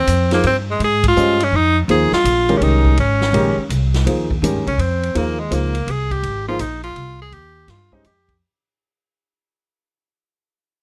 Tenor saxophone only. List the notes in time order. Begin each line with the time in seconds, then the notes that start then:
Already playing: C4
0.34 A#3
0.47 C4
0.71 G#3
0.84 G#4
1.08 F4
1.44 C#4
1.55 D#4
1.91 G#4
2.14 F4
2.58 C#4
2.63 D#4
3.00 C#4
4.68 C#4
4.81 C4
5.17 A#3
5.39 G#3
5.54 A#3
5.91 G#4
6.12 G4
6.48 F4
6.61 D#4
6.84 F4
7.22 G#4
7.34 G4
7.70 F4
7.94 D#4
8.06 G4